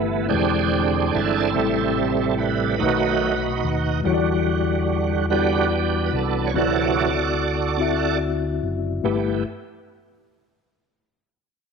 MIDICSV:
0, 0, Header, 1, 4, 480
1, 0, Start_track
1, 0, Key_signature, 1, "major"
1, 0, Tempo, 832178
1, 898, Time_signature, 6, 3, 24, 8
1, 6763, End_track
2, 0, Start_track
2, 0, Title_t, "Tine electric piano"
2, 0, Program_c, 0, 4
2, 0, Control_c, 0, 64, 127
2, 0, Note_on_c, 0, 43, 65
2, 0, Note_on_c, 0, 57, 78
2, 0, Note_on_c, 0, 64, 79
2, 0, Note_on_c, 0, 67, 68
2, 0, Note_on_c, 0, 71, 89
2, 152, Note_off_c, 0, 43, 0
2, 169, Note_on_c, 0, 56, 54
2, 176, Note_on_c, 0, 62, 50
2, 178, Note_on_c, 0, 52, 53
2, 182, Note_off_c, 0, 64, 0
2, 182, Note_on_c, 0, 64, 51
2, 187, Note_off_c, 0, 71, 0
2, 187, Control_c, 0, 64, 0
2, 187, Note_on_c, 0, 71, 50
2, 191, Note_off_c, 0, 57, 0
2, 192, Note_off_c, 0, 67, 0
2, 221, Note_off_c, 0, 71, 0
2, 226, Note_on_c, 0, 72, 61
2, 291, Control_c, 0, 64, 127
2, 746, Note_off_c, 0, 56, 0
2, 750, Note_off_c, 0, 62, 0
2, 752, Note_off_c, 0, 64, 0
2, 775, Note_off_c, 0, 72, 0
2, 874, Note_off_c, 0, 52, 0
2, 896, Note_on_c, 0, 55, 66
2, 903, Note_on_c, 0, 45, 58
2, 903, Note_on_c, 0, 60, 60
2, 904, Note_on_c, 0, 64, 64
2, 905, Control_c, 0, 64, 0
2, 915, Note_on_c, 0, 69, 75
2, 1008, Control_c, 0, 64, 127
2, 1469, Note_off_c, 0, 55, 0
2, 1472, Note_off_c, 0, 60, 0
2, 1473, Note_off_c, 0, 64, 0
2, 1478, Note_off_c, 0, 69, 0
2, 1596, Note_off_c, 0, 45, 0
2, 1611, Note_on_c, 0, 57, 55
2, 1621, Note_on_c, 0, 63, 51
2, 1622, Note_on_c, 0, 47, 58
2, 1623, Control_c, 0, 64, 0
2, 1624, Note_on_c, 0, 66, 57
2, 1631, Note_on_c, 0, 71, 63
2, 1723, Control_c, 0, 64, 127
2, 2186, Note_off_c, 0, 57, 0
2, 2191, Note_off_c, 0, 63, 0
2, 2193, Note_off_c, 0, 66, 0
2, 2196, Note_off_c, 0, 71, 0
2, 2315, Note_off_c, 0, 47, 0
2, 2327, Note_on_c, 0, 55, 83
2, 2336, Note_on_c, 0, 64, 75
2, 2341, Note_on_c, 0, 52, 63
2, 2343, Control_c, 0, 64, 0
2, 2345, Note_on_c, 0, 66, 76
2, 2352, Note_on_c, 0, 73, 72
2, 2381, Note_off_c, 0, 73, 0
2, 2389, Note_on_c, 0, 74, 91
2, 2449, Control_c, 0, 64, 127
2, 2905, Note_off_c, 0, 55, 0
2, 2909, Note_off_c, 0, 64, 0
2, 2913, Note_off_c, 0, 66, 0
2, 2935, Note_off_c, 0, 74, 0
2, 3035, Note_off_c, 0, 52, 0
2, 3053, Note_on_c, 0, 55, 52
2, 3064, Note_on_c, 0, 64, 55
2, 3069, Note_on_c, 0, 66, 53
2, 3075, Note_on_c, 0, 74, 64
2, 3628, Note_off_c, 0, 55, 0
2, 3633, Note_off_c, 0, 64, 0
2, 3636, Note_off_c, 0, 66, 0
2, 3638, Note_off_c, 0, 74, 0
2, 3772, Note_on_c, 0, 60, 66
2, 3781, Note_on_c, 0, 64, 56
2, 3782, Note_on_c, 0, 50, 57
2, 3783, Control_c, 0, 64, 0
2, 3789, Note_on_c, 0, 66, 62
2, 3794, Note_on_c, 0, 74, 67
2, 3892, Control_c, 0, 64, 127
2, 4347, Note_off_c, 0, 60, 0
2, 4352, Note_off_c, 0, 64, 0
2, 4356, Note_off_c, 0, 66, 0
2, 4358, Note_off_c, 0, 74, 0
2, 4476, Note_off_c, 0, 50, 0
2, 4485, Note_on_c, 0, 60, 62
2, 4494, Note_on_c, 0, 64, 57
2, 4499, Note_on_c, 0, 66, 62
2, 4508, Note_on_c, 0, 76, 73
2, 5064, Note_off_c, 0, 60, 0
2, 5069, Note_off_c, 0, 64, 0
2, 5071, Note_off_c, 0, 66, 0
2, 5076, Note_off_c, 0, 76, 0
2, 5214, Note_on_c, 0, 57, 70
2, 5216, Note_on_c, 0, 43, 65
2, 5216, Note_on_c, 0, 64, 58
2, 5218, Note_on_c, 0, 67, 60
2, 5218, Note_on_c, 0, 71, 66
2, 5225, Control_c, 0, 64, 0
2, 5439, Note_off_c, 0, 57, 0
2, 5440, Note_off_c, 0, 43, 0
2, 5440, Note_off_c, 0, 64, 0
2, 5441, Note_off_c, 0, 67, 0
2, 5441, Note_off_c, 0, 71, 0
2, 6763, End_track
3, 0, Start_track
3, 0, Title_t, "Tonewheel organ"
3, 0, Program_c, 1, 16
3, 0, Note_on_c, 1, 52, 43
3, 0, Note_on_c, 1, 57, 39
3, 0, Note_on_c, 1, 59, 51
3, 153, Note_off_c, 1, 52, 0
3, 153, Note_off_c, 1, 57, 0
3, 157, Note_off_c, 1, 59, 0
3, 162, Note_on_c, 1, 50, 47
3, 165, Note_on_c, 1, 60, 53
3, 167, Note_on_c, 1, 68, 48
3, 170, Note_on_c, 1, 62, 51
3, 170, Note_on_c, 1, 67, 73
3, 655, Note_off_c, 1, 60, 0
3, 656, Note_on_c, 1, 69, 75
3, 661, Note_on_c, 1, 60, 51
3, 662, Note_on_c, 1, 64, 54
3, 668, Note_off_c, 1, 67, 0
3, 866, Note_off_c, 1, 50, 0
3, 868, Note_off_c, 1, 68, 0
3, 870, Note_off_c, 1, 62, 0
3, 889, Note_on_c, 1, 48, 45
3, 892, Note_on_c, 1, 55, 41
3, 901, Note_on_c, 1, 57, 52
3, 1353, Note_off_c, 1, 69, 0
3, 1356, Note_off_c, 1, 60, 0
3, 1356, Note_off_c, 1, 64, 0
3, 1374, Note_on_c, 1, 71, 74
3, 1589, Note_off_c, 1, 48, 0
3, 1591, Note_off_c, 1, 55, 0
3, 1595, Note_off_c, 1, 57, 0
3, 1605, Note_on_c, 1, 51, 46
3, 1606, Note_on_c, 1, 54, 44
3, 1607, Note_off_c, 1, 71, 0
3, 1610, Note_on_c, 1, 57, 54
3, 1610, Note_on_c, 1, 66, 55
3, 1611, Note_on_c, 1, 63, 61
3, 1614, Note_on_c, 1, 71, 74
3, 1929, Note_off_c, 1, 51, 0
3, 1930, Note_off_c, 1, 54, 0
3, 1932, Note_off_c, 1, 57, 0
3, 2132, Note_off_c, 1, 71, 0
3, 2310, Note_off_c, 1, 63, 0
3, 2310, Note_off_c, 1, 66, 0
3, 2335, Note_on_c, 1, 50, 51
3, 2338, Note_on_c, 1, 66, 43
3, 2341, Note_on_c, 1, 55, 51
3, 3032, Note_off_c, 1, 50, 0
3, 3034, Note_off_c, 1, 66, 0
3, 3035, Note_off_c, 1, 55, 0
3, 3058, Note_on_c, 1, 50, 41
3, 3059, Note_on_c, 1, 66, 38
3, 3062, Note_on_c, 1, 55, 48
3, 3062, Note_on_c, 1, 59, 46
3, 3067, Note_on_c, 1, 62, 49
3, 3070, Note_on_c, 1, 67, 70
3, 3274, Note_off_c, 1, 50, 0
3, 3274, Note_off_c, 1, 66, 0
3, 3276, Note_off_c, 1, 55, 0
3, 3493, Note_on_c, 1, 71, 49
3, 3516, Note_off_c, 1, 67, 0
3, 3535, Note_off_c, 1, 71, 0
3, 3553, Note_on_c, 1, 69, 77
3, 3729, Note_on_c, 1, 73, 61
3, 3750, Note_off_c, 1, 69, 0
3, 3756, Note_off_c, 1, 59, 0
3, 3758, Note_off_c, 1, 62, 0
3, 3773, Note_off_c, 1, 73, 0
3, 3776, Note_on_c, 1, 48, 41
3, 3776, Note_on_c, 1, 52, 40
3, 3779, Note_on_c, 1, 66, 60
3, 3782, Note_on_c, 1, 69, 57
3, 3786, Note_on_c, 1, 54, 46
3, 3797, Note_on_c, 1, 74, 85
3, 4095, Note_off_c, 1, 48, 0
3, 4095, Note_off_c, 1, 52, 0
3, 4100, Note_off_c, 1, 54, 0
3, 4715, Note_off_c, 1, 66, 0
3, 4716, Note_off_c, 1, 69, 0
3, 4724, Note_off_c, 1, 74, 0
3, 5218, Note_on_c, 1, 57, 47
3, 5220, Note_on_c, 1, 59, 49
3, 5221, Note_on_c, 1, 67, 57
3, 5223, Note_on_c, 1, 52, 53
3, 5441, Note_off_c, 1, 57, 0
3, 5442, Note_off_c, 1, 59, 0
3, 5443, Note_off_c, 1, 67, 0
3, 5444, Note_off_c, 1, 52, 0
3, 6763, End_track
4, 0, Start_track
4, 0, Title_t, "Fingered electric bass"
4, 0, Program_c, 2, 33
4, 0, Note_on_c, 2, 31, 81
4, 159, Note_off_c, 2, 31, 0
4, 185, Note_on_c, 2, 28, 75
4, 638, Note_off_c, 2, 28, 0
4, 663, Note_on_c, 2, 31, 75
4, 881, Note_off_c, 2, 31, 0
4, 906, Note_on_c, 2, 33, 79
4, 1598, Note_off_c, 2, 33, 0
4, 1624, Note_on_c, 2, 35, 79
4, 2077, Note_off_c, 2, 35, 0
4, 2097, Note_on_c, 2, 39, 75
4, 2317, Note_off_c, 2, 39, 0
4, 2338, Note_on_c, 2, 40, 80
4, 3514, Note_off_c, 2, 40, 0
4, 3536, Note_on_c, 2, 36, 77
4, 3757, Note_off_c, 2, 36, 0
4, 3773, Note_on_c, 2, 38, 82
4, 4952, Note_off_c, 2, 38, 0
4, 4977, Note_on_c, 2, 30, 69
4, 5198, Note_off_c, 2, 30, 0
4, 5213, Note_on_c, 2, 31, 65
4, 5438, Note_off_c, 2, 31, 0
4, 6763, End_track
0, 0, End_of_file